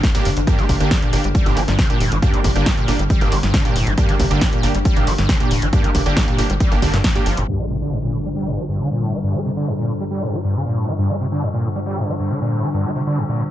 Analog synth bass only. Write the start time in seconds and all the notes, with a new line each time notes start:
0.25 F1
0.37 G1
0.69 G1
0.80 G1
1.13 G1
1.24 G1
1.46 G1
1.57 G1
1.68 G1
2.01 F1
2.12 G1
2.44 G1
2.56 G1
2.88 G1
2.99 G1
3.21 G1
3.32 G1
3.43 G1
3.76 F1
3.87 G1
4.20 G1
4.31 G1
4.63 G1
4.75 G1
4.96 G1
5.07 G1
5.18 G1
5.51 F1
5.62 G1
5.95 G1
6.06 G1
6.39 G1
6.50 G1
6.72 G1
6.82 G1
6.94 G2
7.26 G1
7.37 G1